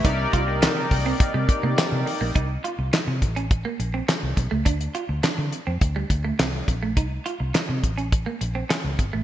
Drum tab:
HH |x-x-x-o-x-x-x-o-|x-x-x-xxx-x-x-x-|xxx-x-x-x-x-x-x-|x-x-x-xxx-x-x-x-|
CP |----x-------x---|----x-------x---|----x-------x---|----x-------x---|
SD |----o-------o---|----o-------o---|----o-------o---|----o-------o---|
BD |o-o---o-o-o-----|o-----o-o-----o-|o-------o-o---o-|o-----o-o-----o-|